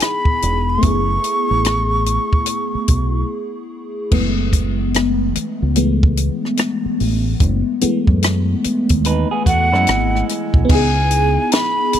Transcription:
Already playing: B3 D#4 E4 G#4
0.00 B5, cross-stick, closed hi-hat
0.25 kick
0.42 E1, closed hi-hat
0.70 C#6
0.78 A3 B3
0.83 F#1 E4, kick, closed hi-hat
0.88 G#4
1.24 closed hi-hat
1.51 A1
1.65 cross-stick, closed hi-hat
2.06 closed hi-hat
2.33 kick
2.46 closed hi-hat
2.75 muted fingered electric bass stroke
2.88 B1, kick, closed hi-hat
4.11 F#1 E3 G#3 A3 B3, kick, crash
4.53 kick, closed hi-hat
4.94 cross-stick, closed hi-hat
5.36 muted fingered electric bass stroke, closed hi-hat
5.62 C#2
5.76 E3 G#3 A3 B3, closed hi-hat
6.03 kick
6.17 closed hi-hat
6.45 cross-stick
6.57 cross-stick, closed hi-hat
6.86 muted fingered electric bass stroke
7.00 A1, open hi-hat
7.40 F#1, kick, closed hi-hat
7.81 E3 G#3 A3 B3, muted fingered electric bass stroke, closed hi-hat
8.07 F#2, kick
8.23 cross-stick, closed hi-hat
8.64 muted fingered electric bass stroke, closed hi-hat
8.89 D#2, kick, closed hi-hat
9.05 D#4 B4, closed hi-hat
9.31 B3 G#4
9.46 E2 A3 F#4 F#5, kick, closed hi-hat
9.72 F#2 G#3 E4, cross-stick
9.87 G#1, cross-stick, closed hi-hat
10.15 cross-stick
10.29 cross-stick, closed hi-hat
10.54 B1, kick
10.65 B3 D#4
10.69 C#2 E4 G#5, kick, crash
10.75 G#4
11.11 closed hi-hat
11.52 B5, snare, closed hi-hat
11.93 muted fingered electric bass stroke, closed hi-hat

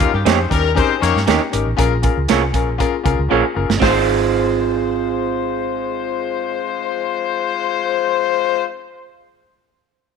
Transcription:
Already playing: C#3 A#3 F4
0.00 C#4 D#4 G4 A#4, kick, closed hi-hat
0.14 G2 D#3 C#4 G4
0.24 F2 A#3 C4 C#4 D#4 G4 G#4 C5 C#5, snare, closed hi-hat
0.49 D#2 G3 C#4 D#4 G4 A#4, kick, closed hi-hat
0.75 C4 C#4 D#4 G4 G#4 A#4 C5, kick, closed hi-hat
1.00 F2 A#3 C#4 D#4 G4 A#4 C#5, closed hi-hat
1.15 G2, snare
1.26 D#2 A#3 C#4 D#4 G4 A#4 C#5, snare, closed hi-hat
1.51 G#1 C#4 D#4 G4 A#4, closed hi-hat
1.67 A1
1.77 A#1 C#4 F4 G#4 A#4, kick, closed hi-hat
2.02 C#4 F4 G#4 A#4, kick, closed hi-hat
2.17 C#2
2.28 C2 A#3 C#4 F4 G#4 A#4 C#5, snare, closed hi-hat
2.53 A#1 C#4 F4 G#4 A#4, kick, closed hi-hat
2.78 C#4 F4 G#4 A#4, kick, closed hi-hat
3.03 C2 C#4 F4 G#4 A#4, kick, closed hi-hat
3.19 C#2
3.29 A#1 A#3 C#4 F4 G#4 A#4 C#5
3.54 F#1 C#4 F4 G#4 A#4
3.69 G1, snare
3.77 C4 D#4 F4
3.81 G#1 G#3 F4 G#4 C5, kick, snare, open hi-hat
3.85 C5

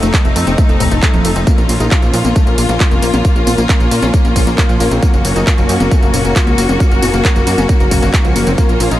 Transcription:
Already playing: A3 C4 D#4, downlifter
0.03 F1 A3, closed hi-hat, tambourine
0.14 A4, kick, clap, closed hi-hat, tambourine
0.25 F1 A3, closed hi-hat, tambourine
0.36 F2 A3, open hi-hat, ride, tambourine
0.47 F1 C4, closed hi-hat, tambourine, high conga
0.58 A3, kick, closed hi-hat, tambourine
0.69 F1 A4, closed hi-hat, tambourine
0.80 F1 A2, kick, open hi-hat, ride, tambourine
0.91 F1 A3, closed hi-hat, tambourine
1.03 A3, kick, clap, closed hi-hat, tambourine
1.14 D#1 F3, closed hi-hat, tambourine
1.25 F1 A3, open hi-hat, ride, tambourine
1.36 F1 C4, closed hi-hat, tambourine
1.47 A#3 C#4 F4, kick, closed hi-hat, tambourine
1.58 A#1 A#4, closed hi-hat, tambourine
1.69 A#1 A#2, open hi-hat, ride, tambourine
1.80 A#1 D#4, closed hi-hat, tambourine
1.91 F4, kick, clap, closed hi-hat, tambourine
2.02 A#1 F3, closed hi-hat, tambourine
2.14 A#2 F3, open hi-hat, ride, tambourine
2.25 A#1 A#3, closed hi-hat, tambourine, high conga
2.36 A3, kick, closed hi-hat, tambourine
2.47 A#1 A#3, closed hi-hat, tambourine
2.58 A#1 A#2, open hi-hat, ride, tambourine
2.69 A#1 A#3, closed hi-hat, tambourine
2.80 F4, kick, clap, closed hi-hat, tambourine
2.91 F1 A#3, closed hi-hat, tambourine
3.02 A#1 A#3, open hi-hat, ride, tambourine
3.14 A#1 A#3, closed hi-hat, tambourine, high conga
3.25 A#3, kick, closed hi-hat, tambourine
3.36 A#1 A#4, closed hi-hat, tambourine
3.47 A#1 A#2, open hi-hat, ride, tambourine, high conga
3.58 A#1 A#3, closed hi-hat, tambourine
3.69 A#4, kick, clap, closed hi-hat, tambourine
3.80 A#1 A#3, closed hi-hat, tambourine
3.91 A#2 A#3, open hi-hat, ride, tambourine
4.03 A#1 C#4, closed hi-hat, tambourine, high conga
4.14 A#3, kick, closed hi-hat, tambourine
4.25 A#1 A#4, closed hi-hat, tambourine
4.36 A#1 A#2, kick, open hi-hat, ride, tambourine
4.47 A#1 A#3, closed hi-hat, tambourine
4.58 A#3, kick, clap, closed hi-hat, tambourine
4.69 A#2 F3, closed hi-hat, tambourine
4.80 A#1 A#3, open hi-hat, ride, tambourine
4.91 A#1 C4, closed hi-hat, tambourine
5.03 A#3 F#4, kick, closed hi-hat, tambourine
5.14 F#1 A#4, closed hi-hat, tambourine
5.25 F#1 A#2, open hi-hat, ride, tambourine
5.36 F#1 D#4, closed hi-hat, tambourine
5.47 F4, kick, clap, closed hi-hat, tambourine
5.58 F#1 F3, closed hi-hat, tambourine
5.69 F#2 F3, open hi-hat, ride, tambourine
5.80 F#1 A#3, closed hi-hat, tambourine, high conga
5.91 A3, kick, closed hi-hat, tambourine
6.03 F#1 A#3, closed hi-hat, tambourine
6.14 F#1 A#2, open hi-hat, ride, tambourine
6.25 F#1 A#3, closed hi-hat, tambourine
6.36 F4, kick, clap, closed hi-hat, tambourine
6.47 C#2 A#3, closed hi-hat, tambourine
6.58 F#1 A#3, open hi-hat, ride, tambourine
6.69 F#1 A#3, closed hi-hat, tambourine, high conga
6.80 A#3, kick, closed hi-hat, tambourine
6.91 F#1 A#4, closed hi-hat, tambourine
7.02 F#1 A#2, open hi-hat, ride, tambourine, high conga
7.14 F#1 A#3, closed hi-hat, tambourine
7.25 A#4, kick, clap, closed hi-hat, tambourine
7.36 F#1 A#3, closed hi-hat, tambourine
7.47 F#2 A#3, open hi-hat, ride, tambourine
7.58 F#1 C#4, closed hi-hat, tambourine, high conga
7.69 A#3, kick, closed hi-hat, tambourine
7.80 F#1 A#4, closed hi-hat, tambourine
7.91 F#1 A#2, kick, open hi-hat, ride, tambourine
8.02 F#1 A#3, closed hi-hat, tambourine
8.14 A#3, kick, clap, closed hi-hat, tambourine
8.25 C#2 F3, closed hi-hat, tambourine
8.36 F#1 A#3, open hi-hat, ride, tambourine
8.47 F#1 C4, closed hi-hat, tambourine
8.58 A#3 F4, kick, closed hi-hat, tambourine
8.69 A#1 A#4, closed hi-hat, tambourine
8.80 A#1 A#2, open hi-hat, ride, tambourine
8.91 A#1 D#4, closed hi-hat, tambourine

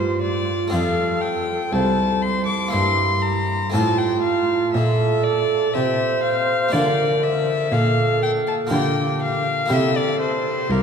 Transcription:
Already playing: G2 D4 F4 C5
0.22 D5
0.68 A3 C4 F4
0.72 F2 A4 F5
1.22 G5
1.72 C2 C5 A5
2.22 C6
2.46 D6
2.68 A#3 E4
2.73 G2 E4 C6
3.22 A#5
3.70 A3 C4 F4 A5
3.74 A2 F4
3.98 G5
4.22 F5
4.73 A#2 A4 E5
5.24 D5
5.73 C3 C5 E5
6.23 F5
6.69 A#3 D4 F4
6.73 D3 A#4 D5
7.23 E5
7.72 A#2 A4 F5
8.23 G5
8.47 A5
8.67 A#3 F4 G4
8.71 D3 G4 G5
9.22 F5
9.66 A#3 E4 G4
9.70 C3 A4 E5
9.97 D5
10.21 C5
10.70 C2 G4 A#4

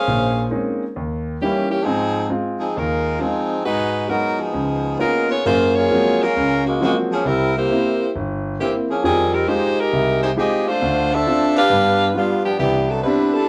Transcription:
Already playing: C#4 G#4 C5 F5
0.07 A#1 A#2
0.51 G#3 A#3 C4 C#4 D#4
0.96 D#2
1.42 E3 G3 A#3 C#4 D#4 E4 G4
1.70 E3 A#3 C#4 G4
1.82 G#2 F3 C4 D#4 G#4
1.86 C4
2.29 G#3 C4 F4
2.59 F3 C4 D#4 G#4
2.76 D#2 G#3 D#4 F4 A#4
3.20 F3 G#3 C4 D#4 F4 G#4
3.65 G#2 G#3 D#4 F#4 B4
4.09 F#3 G#3 B3 D#4 F#4 A#4
4.39 F3 B3 D#4 G#4
4.54 C#2
4.99 G#3 A#3 B3 C#4 D#4 F4 A#4
5.29 B3 F4 G#4 C#5
5.45 F#2 A#3 F4 G#4 C5
5.75 A#3 F4 G#4 C#5
5.91 F3 F#3 G#3 A#3 C4
6.22 G#3 C#4 F4 A#4
6.37 C#2
6.66 C#3 G#3 A#3 F#4
6.81 C#3 F3 F#3 G#3 A#3 C4 F#4
7.12 F3 A#3 C#4 G#4
7.25 C2 G3 C4 E4 A#4
7.56 A#3 E4 G4 C5
7.71 A#3 C4 E4
8.16 G1
8.60 E3 A#3 C4 E4 G4
8.90 F3 A#3 C#4 G#4
9.04 F2 D#3 F3 G3 C4 G#4
9.33 G3 C4 D#4 A#4
9.48 G#3 D#4 F4 G4 C5
9.79 G#3 D#4 G4 A#4
9.92 C2
10.23 G#3 D#4 G4 C5
10.36 G#3 C4 D#4 F4 G4 G#4 D#5
10.67 A3 D4 F4 C5
10.81 D2 D3
11.12 D4 A4 C5 E5
11.26 C4 D4 F4
11.56 D4 G4 B4 F5
11.69 G2 B3
12.15 G3 B3 D4 F4
12.44 F3 B3 D4 G4
12.59 C2 E3 B3 D4 G4
12.89 F#3 B3 D4 A4
13.03 G3 B3 C4 D4 E4 B4
13.33 G3 D4 E4 A4

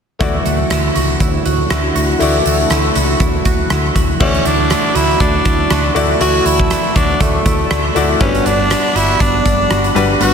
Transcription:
0.19 D2 D3 E3 A3 E4 F#4 D5, kick, closed hi-hat
0.45 D2 A3, closed hi-hat
0.70 D2 E4, cross-stick, closed hi-hat
0.96 C#2 F#4, closed hi-hat
1.20 D2 E4, kick, closed hi-hat
1.45 D2 F#4, closed hi-hat
1.70 D2 E4, cross-stick, closed hi-hat
1.95 D2 F#4, closed hi-hat
2.19 D2 E3 A3 E4 F#4 D5, closed hi-hat
2.45 D2 A3, closed hi-hat
2.70 D2 E4, cross-stick, closed hi-hat
2.95 C#2 F#4, closed hi-hat
3.20 D2 E4, kick, closed hi-hat
3.45 D2 F#4, kick, closed hi-hat
3.70 D2 E4, cross-stick, closed hi-hat
3.95 D2 F#4, kick, closed hi-hat
4.20 D2 E3 A3 C#4 E4 F#4 D5 E5 A5, kick, crash
4.34 closed hi-hat
4.45 D2 D4 E4, closed hi-hat
4.70 A3, cross-stick, closed hi-hat
4.95 D2 E4 F#4, closed hi-hat
5.20 D2 A3 D4, kick, closed hi-hat
5.45 D2 E4, kick, closed hi-hat
5.70 D2 F#4, cross-stick, closed hi-hat
5.95 D2 A3 E4 F#4 D5, closed hi-hat
6.20 D2 E3 A3 E4 F#4 D5, closed hi-hat
6.45 D2 E4, closed hi-hat
6.60 kick
6.70 A3, cross-stick, closed hi-hat
6.96 D2 D4 F#4, kick, closed hi-hat
7.20 D2 A3, kick, closed hi-hat
7.46 D2 E4, kick, closed hi-hat
7.71 D2 E4, cross-stick, closed hi-hat
7.84 F#4
7.95 D2 A3 E4 F#4 D5, closed hi-hat
8.20 G1 G3 B3 C#4 D4 F#4 B4 F#5 B5, kick, closed hi-hat
8.35 closed hi-hat
8.46 G1 D4, closed hi-hat
8.70 B3, cross-stick, closed hi-hat
8.95 G1 E4 F#4, closed hi-hat
9.20 G1 B3 D4, kick, closed hi-hat
9.46 G1 D4, kick, closed hi-hat
9.70 G1 F#4, cross-stick, closed hi-hat
9.84 closed hi-hat
9.95 G1 G3 D4 F#4 B4, closed hi-hat
10.20 G1 G3 B3 D4 F#4 B4, closed hi-hat

